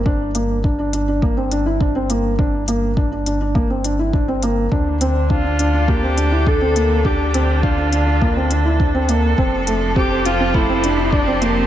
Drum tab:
HH |-x-x-x-x|-x-x-x-x|-x-x-x-x|-x-x-x-x|
BD |o-o-o-o-|o-o-o-o-|o-o-o-o-|o-o-o-o-|

HH |-x-x-x-x|
BD |o-o-o-o-|